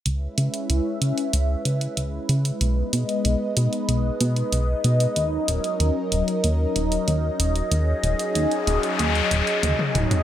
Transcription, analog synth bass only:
\new Staff \with { instrumentName = "Analog synth bass" } { \clef bass \time 4/4 \key ees \phrygian \tempo 4 = 94 des,8 des8 des,8 des8 des,8 des8 des,8 des8 | ces,8 ces8 ces,8 ces8 ces,8 ces8 ces,8 ces8 | ees,8 ees,,8 ees,8 ees,,8 ees,8 ees,,8 ees,8 ees,,8 | ees,8 ees,,8 ees,8 ees,,8 ees,8 ees,,8 ees,8 ees,,8 | }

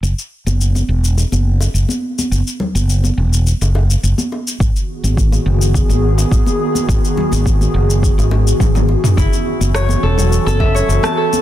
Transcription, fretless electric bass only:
\new Staff \with { instrumentName = "Fretless electric bass" } { \clef bass \time 4/4 \key e \major \tempo 4 = 105 fis,,16 r8 fis,,8 r16 e,,8 r16 fis,,8 r16 fis,,16 r8. | fis,,16 r8 fis,,8 r16 e,,8 r16 fis,,8 r16 fis,,16 r8. | gis,,16 r8 gis,,8 r16 fis,,8 r16 gis,,8 r16 gis,,16 r8. | gis,,16 r8 gis,,8 r16 fis,,8 r16 gis,,8 r16 gis,,8 r8 |
fis,,16 r8 fis,,8 r16 e,,8 r16 fis,,8 r16 fis,,16 r8. | }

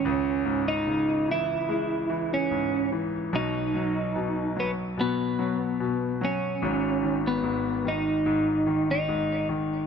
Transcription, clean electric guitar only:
\new Staff \with { instrumentName = "Clean electric guitar" } { \time 4/4 \key gis \minor \tempo 4 = 73 cis'8. dis'8. e'4~ e'16 cis'8. r8 | dis'4. b8 b4. cis'8~ | cis'8. b8. dis'4~ dis'16 dis'8. r8 | }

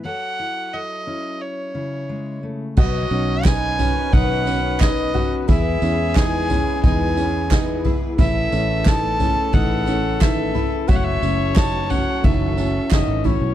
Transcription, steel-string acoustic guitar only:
\new Staff \with { instrumentName = "Steel-string acoustic guitar" } { \time 4/4 \key b \mixolydian \tempo 4 = 89 << { a'8 e'8 a'8 e'4 e'4. | r1 | r1 | r1 |
r1 | } \\ { fis4. cis'4 cis8 gis8 a8 | r1 | r1 | r1 |
r1 | } >> }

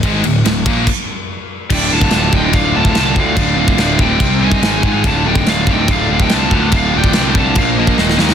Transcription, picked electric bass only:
\new Staff \with { instrumentName = "Picked electric bass" } { \clef bass \time 4/4 \key d \phrygian \tempo 4 = 144 gis,,8 d,,8 d,,8 bes,,8 r2 | d,,8 d,,8 d,,8 d,,8 d,,8 d,,8 c,8 d,8 | d,,8 d,,8 d,,4 c,4 gis,,8 gis,8 | d,,8 d,,8 d,,8 d,,8 d,,8 d,,8 c,8 d,8 |
d,,8 d,,8 c,4 bes,,4 ees,,8 ees,8 | }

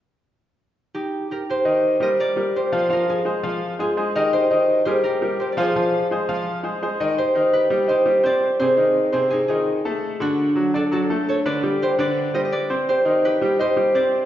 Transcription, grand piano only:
\new Staff \with { instrumentName = "Grand piano" } { \time 4/4 \key c \minor \tempo 4 = 168 r1 | r8 <ees ees' ees''>4 <g g' bes'>4 <g g' bes'>4 <f f' f''>8 | <f f' f''>4 <aes aes' c''>8 <f f' f''>4 <aes aes' c''>8 <aes aes' c''>8 <ees ees' ees''>8~ | <ees ees' ees''>8 <ees ees' ees''>4 <g g' bes'>4 <g g' bes'>4 <f f' f''>8 |
<f f' f''>4 <aes aes' c''>8 <f f' f''>4 <aes aes' c''>8 <aes aes' c''>8 <ees ees' ees''>8 | r8 <ees ees'>4 <g g'>8 <ees' ees''>8 <g g'>8 <c' c''>4 | <c c'>8 <ees ees'>4 <c c'>4 <ees ees'>4 <a a'>8~ | <a a'>8 <d d'>4 <fis fis'>8 <d' d''>8 <fis fis'>8 <a a'>4 |
<d d'>8 <g g'>4 <d d'>4 <g g'>4 <c' c''>8~ | <c' c''>8 <ees ees'>4 <g g'>8 <ees' ees''>8 <g g'>8 <c' c''>4 | }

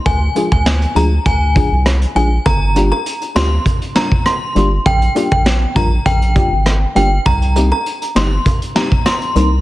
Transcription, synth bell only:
\new Staff \with { instrumentName = "Synth bell" } { \time 4/4 \key c \minor \tempo 4 = 100 aes''8 r16 aes''16 r8 bes''16 r16 aes''8. r8. aes''16 r16 | bes''8 r16 bes''16 r8 c'''16 r8. bes''16 r16 c'''8. r16 | g''8 r16 g''16 r8 bes''16 r16 g''8. r8. g''16 r16 | bes''8 r16 bes''16 r8 c'''16 r8. bes''16 r16 c'''8. r16 | }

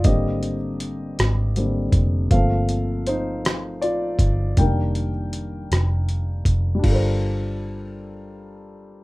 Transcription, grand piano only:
<<
  \new Staff \with { instrumentName = "Grand piano" } { \time 6/8 \key g \minor \tempo 4. = 53 <g' ees''>2~ <g' ees''>8 r8 | <a' f''>4 <ees' c''>4 <f' d''>4 | <bes' g''>2 r4 | <g d' f' a' bes' c''>2. | }
  \new Staff \with { instrumentName = "Grand piano" } { \time 6/8 \key g \minor <d g bes c'>8 r4. <d g bes c'>8 r8 | <f a bes c'>2. | <ees g bes d'>8 r2 r8 | r2. | }
>>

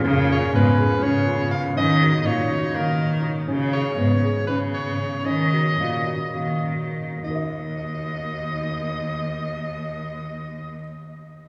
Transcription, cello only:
\new Staff \with { instrumentName = "Cello" } { \clef bass \time 7/8 \key ees \minor \tempo 4 = 114 des4 aes,8 r8 des4. | ees4 bes,8 r8 ees4. | des4 aes,8 r8 des4. | ees4 bes,8 r8 ees4. |
ees,2.~ ees,8~ | ees,2.~ ees,8 | }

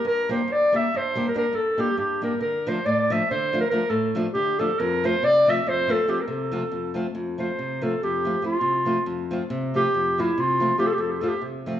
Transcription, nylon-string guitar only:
\new Staff \with { instrumentName = "Nylon-string guitar" } { \time 11/8 \key f \major \tempo 4 = 140 << { r8 <g bes d' g'>8 r8 <g bes d' g'>8 r8 <g bes d' g'>8 <g bes d' g'>8 r8 <g bes d' g'>8 r8 <g bes d' g'>8 | r8 <f a d' f'>8 r8 <f a d' f'>8 r8 <f a d' f'>8 <f a d' f'>8 r8 <f a d' f'>8 r8 <f a d' f'>8 | r8 <f a c' f'>8 r8 <f a c' f'>8 r8 <f a c' f'>8 <f a c' f'>8 r8 <f a c' f'>8 r8 <f a c' f'>8 | r8 <f a c' f'>8 r8 <f a c' f'>8 r8 <f a c' f'>8 <f a c' f'>8 r8 <f a c' f'>8 r8 <f a c' f'>8 |
r8 <f a c' f'>8 r8 <f a c' f'>8 r8 <f a c' f'>8 <f a c' f'>8 r8 <f a c' f'>8 r8 <f a c' f'>8 | } \\ { g,4 g,4 g,4 r8 g,4 g,4 | d4 a,4 d4 r8 a,4 d4 | f,4 c4 f,4 r8 c4 f,4 | f,4 c4 f,4 r8 c4 f,4 |
c4 f,4 c4 r8 f,4 c4 | } >> }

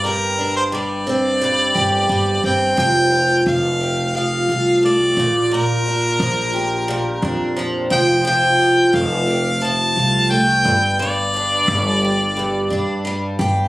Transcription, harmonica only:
\new Staff \with { instrumentName = "Harmonica" } { \time 4/4 \key f \major \tempo 4 = 88 bes'8. c''16 d''2~ d''8 g''8 | g''4 f''4 f''4 d''4 | bes'2. r8 g''8 | g''4 f''4 a''4 g''4 |
d''2. r4 | }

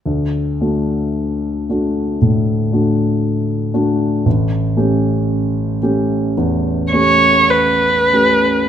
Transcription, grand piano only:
\new Staff \with { instrumentName = "Grand piano" } { \time 4/4 \key d \major \tempo 4 = 56 d,8 <a d' fis'>4 <a d' fis'>8 a,8 <a d' fis'>4 <a d' fis'>8 | a,,8 <a cis' g'>4 <a cis' g'>8 e,8 <a cis' g'>4 <a cis' g'>8 | }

